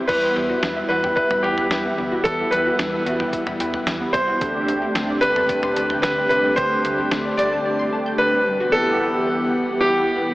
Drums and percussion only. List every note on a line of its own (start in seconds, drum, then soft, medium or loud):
0.09 kick loud
0.09 crash medium
0.63 snare loud
1.04 mid tom medium
1.17 kick medium
1.31 mid tom loud
1.58 mid tom medium
1.71 snare loud
2.25 kick loud
2.25 closed hi-hat medium
2.52 closed hi-hat medium
2.79 snare loud
2.79 closed hi-hat medium
3.06 closed hi-hat medium
3.20 mid tom medium
3.33 kick medium
3.33 closed hi-hat medium
3.47 mid tom loud
3.60 closed hi-hat medium
3.74 mid tom medium
3.87 snare loud
3.87 closed hi-hat medium
4.14 kick loud
4.14 closed hi-hat medium
4.41 kick loud
4.41 closed hi-hat medium
4.68 closed hi-hat medium
4.95 snare loud
4.95 closed hi-hat medium
5.23 closed hi-hat medium
5.36 mid tom medium
5.49 kick medium
5.49 closed hi-hat medium
5.63 mid tom loud
5.76 closed hi-hat medium
5.90 mid tom medium
6.03 snare loud
6.03 closed hi-hat medium
6.31 closed hi-hat medium
6.57 kick loud
6.57 closed hi-hat medium
6.85 closed hi-hat medium
7.11 snare loud
7.11 closed hi-hat medium
7.39 closed hi-hat medium